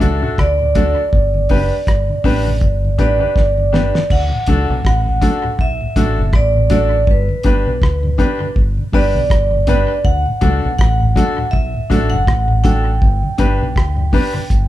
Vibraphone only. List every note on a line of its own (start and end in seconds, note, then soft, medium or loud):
0.00 0.35 E5 loud
0.40 0.74 D5 medium
0.75 2.99 D5 medium
3.01 4.14 D5 medium
4.12 4.85 F#5 medium
4.86 5.62 F#5 loud
5.61 6.36 E5 loud
6.35 6.69 D5 medium
6.72 7.09 D5 medium
7.11 8.54 B4 medium
8.94 10.01 D5 medium
10.05 10.75 F#5 loud
10.79 11.55 F#5 medium
11.51 12.07 E5 loud
12.10 12.65 F#5 loud
12.64 14.68 G5 loud